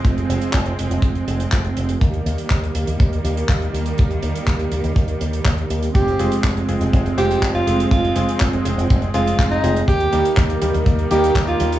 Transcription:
<<
  \new Staff \with { instrumentName = "Alto saxophone" } { \time 4/4 \key f \minor \tempo 4 = 122 r1 | r1 | r1 | g'8. r4. r16 g'8. f'8. |
f'8. r4. r16 f'8. ees'8. | g'8. r4. r16 g'8. f'8. | }
  \new Staff \with { instrumentName = "Electric grand piano" } { \time 4/4 \key f \minor r1 | r1 | r1 | r8 <aes c' f' aes'>4 <aes c' f' aes'>4 <aes c' f' c''>4 <aes c' f' aes'>8 |
r8 <aes c' f' aes'>4 <aes c' f' aes'>4 <aes c' f' aes'>4 <aes c' f' aes'>8 | r8 <g bes ees' g'>4 <g bes ees' g'>4 <g bes ees' g'>4 <g bes ees' g'>8 | }
  \new Staff \with { instrumentName = "String section" } { \clef bass \time 4/4 \key f \minor <f aes c'>1 | <ees g bes>1~ | <ees g bes>1 | <f aes c'>1~ |
<f aes c'>1 | <ees g bes>1 | }
  \new Staff \with { instrumentName = "Fingered electric bass" } { \clef bass \time 4/4 \key f \minor f,,16 r16 f,,16 r16 f,,16 r16 f,,16 f,,16 f,,16 r16 f,,16 r16 f,,16 r16 f,,16 r16 | ees,16 r16 ees,16 r16 ees,16 r16 ees,16 ees,16 ees,16 r16 ees,16 r16 ees,16 r16 ees,16 r16 | ees,16 r16 ees,16 r16 ees,16 r16 ees,16 ees,16 ees,16 r16 ees,16 r16 ees,16 r16 ees,16 r16 | f,,16 r16 f,,16 r16 f,,16 r16 f,,16 f,,16 f,,16 r16 f,,16 r16 f,,16 r16 f,,16 r16 |
f,,16 r16 f,,16 r16 f,,16 r16 f,,16 f,,16 f,,16 r16 f,,16 r16 f,,16 r16 f,,16 r16 | ees,16 r16 ees,16 r16 ees,16 r16 ees,16 ees,16 ees,16 r16 ees,16 r16 ees,16 r16 ees,16 r16 | }
  \new DrumStaff \with { instrumentName = "Drums" } \drummode { \time 4/4 <hh bd>16 hh16 hh16 hh16 <hc hh bd>16 hh16 hh16 hh16 <hh bd>16 hh16 hh16 hh16 <hc hh bd>16 hh16 hh16 hh16 | <hh bd>16 hh16 hh16 hh16 <hc hh bd>16 hh16 hh16 hh16 <hh bd>16 hh16 hh16 hh16 <hc hh bd>16 hh16 hh16 hh16 | <hh bd>16 hh16 hh16 hh16 <hc hh bd>16 hh16 hh16 hh16 <hh bd>16 hh16 hh16 hh16 <hc hh bd>16 hh16 hh16 hh16 | <hh bd>16 hh16 hh16 hh16 <hc hh bd>16 hh16 hh16 hh16 <hh bd>16 hh16 hh16 hh16 <hc hh bd>16 hh16 hh16 hh16 |
<hh bd>16 hh16 hh16 hh16 <hc hh bd>16 hh16 hh16 hh16 <hh bd>16 hh16 hh16 hh16 <hc hh bd>16 hh16 hh16 hh16 | <hh bd>16 hh16 hh16 hh16 <hc hh bd>16 hh16 hh16 hh16 <hh bd>16 hh16 hh16 hh16 <hc hh bd>16 hh16 hh16 hh16 | }
>>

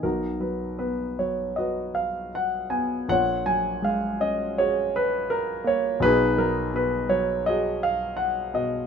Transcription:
<<
  \new Staff \with { instrumentName = "Grand piano" } { \time 4/4 \key b \lydian \tempo 4 = 82 << { ais'8 b'8 b'8 cis''8 dis''8 eis''8 fis''8 gis''8 | fis''8 gis''8 eis''8 dis''8 cis''8 b'8 ais'8 cis''8 | b'8 ais'8 b'8 cis''8 dis''8 eis''8 fis''8 dis''8 | } \\ { <dis' fis'>2 <fis' b'>2 | cis''2 <fis' gis'>2 | <dis' gis'>2 <fis' gis'>2 | } >> }
  \new Staff \with { instrumentName = "Grand piano" } { \clef bass \time 4/4 \key b \lydian <b,, b,>8 fis8 b8 fis2 b8 | <ais,, ais,>8 fis8 gis8 cis'2 ais8 | <b,, b,>8 fis8 b,8 fis2 b,8 | }
>>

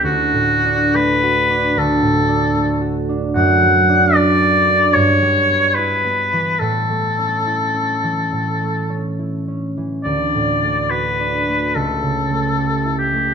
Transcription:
<<
  \new Staff \with { instrumentName = "Oboe" } { \time 4/4 \key d \major \tempo 4 = 72 fis'4 b'4 a'4. r8 | fis''4 d''4 cis''4 b'4 | a'2. r4 | d''4 b'4 a'4. g'8 | }
  \new Staff \with { instrumentName = "Harp" } { \time 4/4 \key d \major \tuplet 3/2 { <d, a a'>8 a,8 d'8 a8 fis'8 d'8 d,8 a,8 d'8 a8 fis'8 d'8 } | \tuplet 3/2 { fis,8 fis8 d'8 a'8 fis'8 d'8 g,8 g8 b8 e'8 b8 e8 } | \tuplet 3/2 { a,8 a8 cis'8 e'8 cis'8 e8 a,8 a8 cis'8 e'8 cis'8 e8 } | \tuplet 3/2 { d,8 a,8 a8 fis'8 d'8 a8 cis,8 cis8 a8 g'8 e'8 a8 } | }
>>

